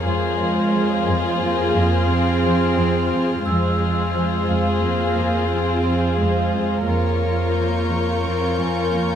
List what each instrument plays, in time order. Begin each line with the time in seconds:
0.05 cello section F2 G#3, double bass section F2, viola section F4, ambient pad G#4 C5 F5, violin section G#4 C5 C6 F6, vibraphone C6
0.40 cello section F2
0.74 cello section F3
1.07 cello section F2
1.41 cello section F2 A#3
1.76 cello section F2
2.09 cello section F2 C4
2.44 cello section F3
2.78 cello section F2
3.12 cello section F2
3.45 double bass section F2, cello section F2 G#3, viola section F4, violin section G#4 C5, ambient pad G#4 C5 F5, vibraphone E6
3.81 cello section F2
4.16 cello section F3
4.49 cello section F2, vibraphone F5
4.82 cello section F2 A#3
5.18 cello section F2
5.51 cello section F2 C4
5.86 cello section F3
6.19 cello section F2 G#3
6.54 cello section F2
6.87 cello section F2 A#3, double bass section F2, viola section F4, violin section A#4 C#5 C#6, ambient pad A#4 F5 C#6
7.21 cello section F2
7.54 cello section F3, violin section G6
7.89 cello section F2
8.23 cello section F2 C4
8.58 cello section F2, vibraphone G#5
8.92 cello section F2 A#3